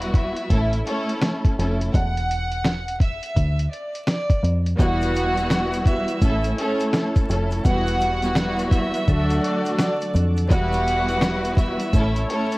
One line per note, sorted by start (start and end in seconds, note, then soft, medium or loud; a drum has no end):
0.00 0.33 E1 loud
0.00 0.49 G3 loud
0.00 0.50 B3 loud
0.00 0.50 E4 loud
0.00 0.50 F#4 loud
0.00 0.11 F#5 loud
0.00 closed hi-hat medium
0.14 0.83 E5 medium
0.14 kick loud
0.14 closed hi-hat medium
0.37 closed hi-hat medium
0.50 0.81 A1 loud
0.50 0.74 A3 medium
0.50 0.75 C#4 medium
0.50 0.75 E4 medium
0.50 0.75 A4 medium
0.50 kick medium
0.50 closed hi-hat loud
0.73 closed hi-hat medium
0.86 1.53 A3 loud
0.86 1.54 C#4 loud
0.86 1.54 E4 medium
0.86 1.54 A4 loud
0.86 1.19 C#5 medium
0.86 closed hi-hat medium
1.09 closed hi-hat medium
1.21 snare loud
1.21 snare medium
1.21 closed hi-hat medium
1.44 kick loud
1.44 closed hi-hat medium
1.58 1.89 F1 loud
1.58 1.91 A3 medium
1.58 1.92 C#4 medium
1.58 1.92 E4 medium
1.58 1.92 A4 medium
1.58 closed hi-hat medium
1.81 closed hi-hat medium
1.93 3.19 E1 loud
1.93 2.96 F#5 loud
1.93 kick loud
1.93 closed hi-hat medium
2.17 closed hi-hat medium
2.31 closed hi-hat medium
2.51 closed hi-hat medium
2.64 snare loud
2.64 snare medium
2.64 closed hi-hat loud
2.88 closed hi-hat medium
3.00 3.68 E5 medium
3.00 kick medium
3.00 closed hi-hat medium
3.23 closed hi-hat medium
3.36 3.67 D2 loud
3.36 kick medium
3.36 closed hi-hat medium
3.59 closed hi-hat medium
3.72 4.04 D5 medium
3.72 closed hi-hat medium
3.95 closed hi-hat medium
4.07 4.40 D5 medium
4.07 snare loud
4.07 snare medium
4.07 closed hi-hat medium
4.30 kick loud
4.30 closed hi-hat medium
4.44 4.74 F2 medium
4.44 closed hi-hat medium
4.67 closed hi-hat medium
4.77 6.04 E1 loud
4.77 6.21 E3 medium
4.77 6.21 G3 loud
4.77 5.84 G3 medium
4.77 6.21 G3 medium
4.77 6.21 B3 loud
4.77 6.21 B3 medium
4.77 5.84 B3 medium
4.77 6.22 E4 loud
4.77 6.22 F#4 loud
4.77 6.21 F#4 medium
4.77 5.84 F#4 medium
4.77 5.83 F#5 loud
4.77 kick loud
4.77 closed hi-hat loud
4.77 shaker medium
5.01 closed hi-hat medium
5.01 shaker medium
5.15 closed hi-hat medium
5.15 shaker medium
5.37 closed hi-hat medium
5.37 shaker medium
5.50 snare loud
5.50 closed hi-hat medium
5.50 shaker medium
5.73 closed hi-hat medium
5.73 shaker medium
5.85 6.53 E5 medium
5.85 kick medium
5.85 closed hi-hat medium
5.85 shaker medium
6.08 closed hi-hat medium
6.08 shaker soft
6.22 6.53 A1 loud
6.22 7.63 A3 medium
6.22 7.27 A3 medium
6.22 6.46 A3 medium
6.22 7.27 C#4 medium
6.22 7.64 C#4 medium
6.22 6.46 C#4 medium
6.22 7.27 E4 medium
6.22 7.63 E4 medium
6.22 6.47 E4 medium
6.22 6.47 A4 loud
6.22 kick medium
6.22 closed hi-hat loud
6.22 shaker medium
6.44 closed hi-hat medium
6.44 shaker soft
6.57 7.24 A3 loud
6.57 7.25 C#4 loud
6.57 7.25 E4 medium
6.57 7.26 A4 loud
6.57 6.91 C#5 medium
6.57 closed hi-hat medium
6.80 closed hi-hat medium
6.80 shaker soft
6.93 snare loud
6.93 snare medium
6.93 closed hi-hat medium
6.93 shaker medium
7.15 kick loud
7.15 closed hi-hat medium
7.15 shaker soft
7.29 7.60 F1 loud
7.29 7.63 A3 medium
7.29 7.63 C#4 medium
7.29 7.63 E4 medium
7.29 7.64 A4 medium
7.29 closed hi-hat medium
7.29 shaker medium
7.51 closed hi-hat soft
7.51 shaker soft
7.63 8.90 E1 loud
7.63 9.06 E3 medium
7.63 8.17 G3 medium
7.63 9.06 G3 medium
7.63 8.70 G3 medium
7.63 8.17 B3 medium
7.63 9.06 B3 medium
7.63 8.70 B3 medium
7.63 8.17 E4 loud
7.63 10.47 F#4 medium
7.63 8.70 F#4 medium
7.63 8.18 F#4 loud
7.63 8.68 F#5 loud
7.63 kick loud
7.63 closed hi-hat loud
7.63 shaker medium
7.87 closed hi-hat medium
7.87 shaker medium
8.01 closed hi-hat medium
8.01 shaker medium
8.22 8.35 G3 medium
8.22 8.36 B3 medium
8.22 8.36 E4 medium
8.22 8.37 F#4 loud
8.22 closed hi-hat soft
8.22 shaker soft
8.35 9.08 G3 loud
8.35 9.08 B3 loud
8.35 9.08 E4 loud
8.35 9.08 F#4 loud
8.35 snare loud
8.35 snare medium
8.35 closed hi-hat loud
8.35 shaker medium
8.59 closed hi-hat medium
8.59 shaker medium
8.71 9.39 E5 medium
8.71 kick medium
8.71 closed hi-hat medium
8.71 shaker medium
8.94 closed hi-hat medium
8.94 shaker soft
9.07 9.38 D2 loud
9.07 10.50 D3 medium
9.07 10.24 F#3 loud
9.07 10.24 A3 loud
9.07 10.25 D4 medium
9.07 10.13 D4 medium
9.07 10.50 D4 medium
9.07 10.25 F#4 loud
9.07 10.13 F#4 medium
9.07 10.13 A4 medium
9.07 10.50 A4 medium
9.07 kick loud
9.07 closed hi-hat loud
9.07 shaker medium
9.30 closed hi-hat medium
9.30 shaker soft
9.44 9.76 D5 medium
9.44 closed hi-hat medium
9.65 closed hi-hat medium
9.65 shaker soft
9.79 10.12 D5 medium
9.79 snare loud
9.79 snare medium
9.79 closed hi-hat medium
9.79 shaker medium
10.01 closed hi-hat medium
10.01 shaker soft
10.15 10.52 F2 loud
10.15 closed hi-hat medium
10.15 shaker medium
10.37 closed hi-hat medium
10.37 shaker soft
10.48 11.76 E1 loud
10.48 11.92 E3 medium
10.48 11.92 G3 loud
10.48 11.92 G3 medium
10.48 11.92 B3 loud
10.48 11.92 B3 medium
10.48 11.56 B3 medium
10.48 11.93 E4 loud
10.48 11.93 F#4 loud
10.48 11.56 G4 medium
10.48 11.56 B4 medium
10.48 11.92 F#5 medium
10.48 11.54 F#5 loud
10.48 kick loud
10.48 closed hi-hat loud
10.48 shaker medium
10.73 closed hi-hat medium
10.73 shaker medium
10.87 closed hi-hat medium
10.87 shaker medium
11.09 closed hi-hat soft
11.09 shaker soft
11.21 snare loud
11.21 snare medium
11.21 closed hi-hat loud
11.21 shaker medium
11.45 closed hi-hat medium
11.45 shaker medium
11.57 12.26 E5 medium
11.57 kick loud
11.57 closed hi-hat medium
11.57 shaker medium
11.80 closed hi-hat medium
11.80 shaker soft
11.93 12.24 A1 loud
11.93 12.58 A3 medium
11.93 12.17 A3 medium
11.93 12.58 C#4 medium
11.93 12.18 C#4 loud
11.93 12.58 E4 medium
11.93 12.18 E4 loud
11.93 12.58 A4 medium
11.93 12.18 A4 loud
11.93 12.58 C#5 medium
11.93 kick loud
11.93 closed hi-hat loud
11.93 shaker medium
12.16 closed hi-hat medium
12.16 shaker soft
12.29 12.58 A3 loud
12.29 12.58 C#4 loud
12.29 12.58 E4 medium
12.29 12.58 A4 loud
12.29 12.58 C#5 medium
12.29 closed hi-hat medium
12.52 closed hi-hat medium
12.52 shaker soft